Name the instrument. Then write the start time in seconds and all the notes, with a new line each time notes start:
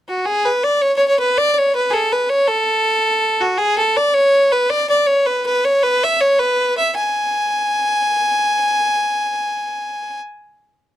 fiddle
0.09 F#4
0.26 G#4
0.45 B4
0.64 D5
0.81 C#5
0.96 C#5
1.08 C#5
1.19 B4
1.38 D5
1.54 D5
1.58 C#5
1.75 B4
1.90 G#4 A4
2.12 B4
2.29 C#5
2.48 A4
3.41 F#4
3.58 G#4
3.78 A4
3.96 D5
4.13 C#5
4.52 B4
4.70 D5
4.89 D5
5.07 C#5
5.26 B4
5.46 B4
5.65 C#5
5.83 B4
6.04 E5
6.20 C#5
6.39 B4
6.77 E5
6.96 G#5